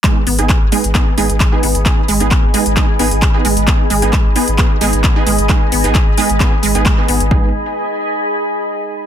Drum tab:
HH |x-oxx-oxx-oxx-ox|x-oxx-oxx-oxx-ox|x-oxx-oxx-oxx-ox|x-oxx-oxx-oxx-ox|
CP |x---x---x---x---|x---x---x---x---|x---x---x---x---|x---x---x---x---|
BD |o---o---o---o---|o---o---o---o---|o---o---o---o---|o---o---o---o---|

HH |----------------|
CP |----------------|
BD |o---------------|